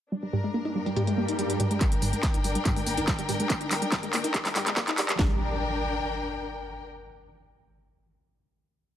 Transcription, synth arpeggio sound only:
0.12 G3
0.23 G3
0.33 G3
0.44 G#3
0.54 A#3
0.65 D#4
0.75 G3
0.86 G3
0.96 G3
1.07 G#3
1.18 A#3
1.28 D#4
1.39 G3
1.50 G3
1.60 G3
1.71 G#3
1.81 G3
1.92 G3
2.02 G3
2.13 G#3
2.23 A#3
2.34 D#4
2.44 G3
2.55 G3
2.65 G3
2.76 G#3
2.87 A#3
2.98 D#4
3.08 G3
3.19 G3
3.29 G3
3.40 G#3
3.50 A#3
3.61 D#4
3.71 G3
3.82 G3
3.92 G3
4.03 G#3
4.13 A#3
4.24 D#4
4.34 G3
4.45 G3
4.56 G3
4.66 G#3
4.77 A#3
4.88 D#4
4.98 G3
5.09 G3
5.19 G3

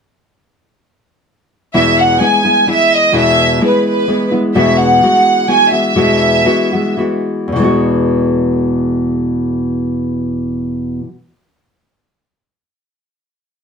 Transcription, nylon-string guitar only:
1.74 E2 B2 E3 G#3 B3 E4
2.20 E3 G#3 B3 E4
2.45 E3 G#3 B3 E4
2.67 E3 G#3 B3 E4
3.13 E2 B2 E3 G#3 B3 E4
3.60 E3 G#3 B3 E4
4.08 E3 G#3 B3 E4
4.32 E3 G#3 B3 E4
4.55 E2 B2 E3 G#3 B3 F#4
5.03 E3 G#3 B3 F#4
5.48 E3 G#3 B3 F#4
5.71 E3 G#3 B3 F#4
5.95 E2 B2 E3 G#3 B3 F#4
6.45 E3 G#3 B3 F#4
6.72 E3 G#3 B3 F#4
6.97 E3 G#3 B3 F#4
7.48 E2
7.52 B2 E3
7.59 G#3 B3
7.64 F#4

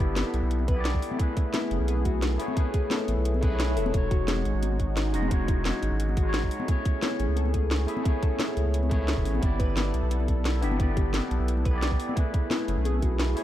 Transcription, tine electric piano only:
Already playing: B3 E4 G4 D5 E5
0.74 B3 E4
0.78 G4 D5
1.16 A3 E4
1.21 G#4 B4
2.38 A3 E4 G#4 C#5
2.53 A3 E4
2.58 G#4 B4
3.41 A3 E4 G#4 B4
3.48 A3 E4
3.52 G#4 C#5
3.91 G#3 D#4
3.95 F#4 C#5
5.12 G#3 D#4 F#4 D#5
5.28 G#3 D#4
5.32 F#4 C#5
6.22 G#3 D#4
6.27 F#4 C#5
6.65 A3 E4
6.69 G#4 C#5
7.87 A3 E4 G#4 E5
8.02 A3 E4
8.06 G#4 C#5
8.89 A3 E4 G#4 C#5
8.97 A3 E4
9.01 G#4 E5
9.39 B3 E4
9.44 G4 D5
10.61 B3 E4 G4 E5
10.76 B3 E4
10.81 G4 D5
11.71 B3 E4
11.75 G4 D5
12.14 A3 E4
12.18 G#4 B4
13.35 A3 E4 G#4 C#5

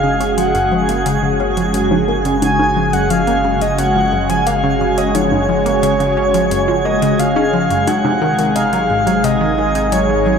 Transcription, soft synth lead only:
Already playing: F5
0.38 F#5
2.42 G#5
2.93 F#5
3.10 F5
3.62 D#5
3.79 F#5
4.30 G#5
4.47 F5
4.98 D#5
5.15 C#5
6.85 D#5
7.19 F5
7.88 F#5
8.56 F5
9.24 D#5
9.93 C#5

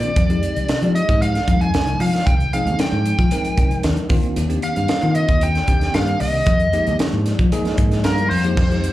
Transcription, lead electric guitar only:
Already playing: D5
0.95 D#5
1.22 F5
1.61 G#5
2.01 F5
2.26 G5
2.53 F5
2.80 G5
4.64 F5
5.15 D#5
5.43 G5
5.94 F5
6.21 D#5
8.04 A#4
8.30 C5

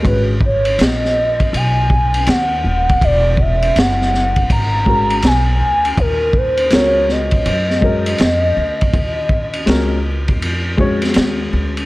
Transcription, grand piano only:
Already playing: A#4 D#5
0.02 G#3 C#4 F#4 B4
4.86 G#3 C#4 F#4 A#4
6.70 G#3 C#4 F4 A#4
6.79 F#4
7.81 G#3 C#4 F#4 A#4
9.66 G#3 C#4 F#4 A#4
10.77 G#3 C#4 F#4 C#5

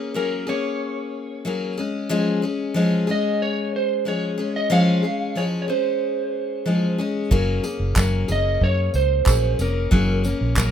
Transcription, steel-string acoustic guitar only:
Already playing: A#3 C#4 G#4
0.14 F#3 A#3 C#4 G#4
0.47 A#3 C#4 G#4
1.45 F#3 A#3 C#4 G#4
1.78 G#3 C#4 G#4
2.09 F3 G#3 C#4 G#4
2.42 G#3 C#4 G#4
2.74 F3 G#3 C#4 G#4
3.07 G#3 C#4 G#4
4.05 F3 G#3 C#4 G#4
4.38 G#3 C#4 G#4
4.70 F3 G#3 C#4 G#4
5.03 G#3 C#4 G#4
5.35 F3 G#3 C#4 G#4
5.68 G#3 C#4 G#4
6.66 F3 G#3 C#4 G#4
6.98 G#3 C#4 G#4
7.31 F#3 A#3 C#4 G#4
7.63 A#3 C#4 G#4
7.96 F#3 A#3 C#4 G#4
8.28 A#3 C#4 G#4
9.26 F#3 A#3 C#4 G#4
9.59 A#3 C#4 G#4
9.91 F#3 A#3 C#4 G#4
10.24 A#3 C#4 G#4
10.56 F#3 A#3 C#4 G#4

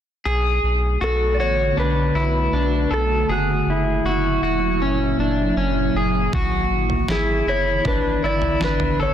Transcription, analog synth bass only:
0.25 B1
0.63 B1
1.01 B1
1.39 A1
1.77 B1
2.15 B1
2.52 B1
2.91 B1
3.28 F#1
3.67 F#1
4.04 F#1
4.42 E1
4.80 F#1
5.18 F#1
5.56 F#1
5.94 F#1
6.33 G#1
6.70 G#1
7.08 G#1
7.46 F#1
7.85 G#1
8.23 G#1
8.60 G#1
8.99 G#1

